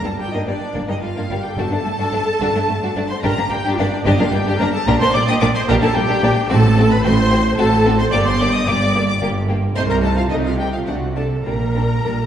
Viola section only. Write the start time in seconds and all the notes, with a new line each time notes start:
0.05 A4
0.19 G4
0.32 D#4
0.46 D4
0.88 D#4
1.01 F4
1.43 G4
1.56 A4
3.09 C5
3.23 A#4
3.50 G4
3.78 D4
4.05 D#4
4.19 F4
4.32 G4
4.59 A#4
4.73 A4
4.87 A#4
5.00 C5
5.14 D5
5.28 D#5
5.42 D5
5.55 C5
5.69 A#4
5.82 A4
5.96 G4
6.50 A4
6.91 B4
7.04 C5
7.58 A4
7.99 C5
8.12 D5
8.26 C5
8.39 D5
8.53 D#5
8.67 D5
9.08 D5
9.75 C5
9.89 A#4
10.03 A4
10.17 F4
10.31 D#4
10.45 F4
10.59 G4
10.73 F4
10.87 F#4
11.15 A4
11.45 A#4